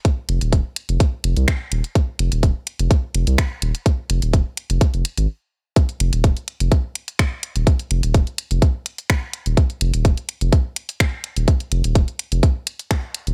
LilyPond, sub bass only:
\new Staff \with { instrumentName = "Sub bass" } { \clef bass \time 4/4 \key ees \mixolydian \tempo 4 = 126 r8 f,,16 ees,,8 r8 f,,16 r8 f,,16 c,16 r8 ees,,16 r16 | r8 f,,16 ees,,8 r8 f,,16 r8 f,,16 c,16 r8 ees,,16 r16 | r8 f,,16 ees,,8 r8 f,,16 r16 f,,16 r16 aes,,16 r4 | r8 f,,16 ees,,8 r8 f,,16 r4. r16 ees,,16 |
r8 f,,16 ees,,8 r8 f,,16 r4. r16 ees,,16 | r8 f,,16 ees,,8 r8 f,,16 r4. r16 ees,,16 | r8 f,,16 ees,,8 r8 f,,16 r4. r16 ees,,16 | }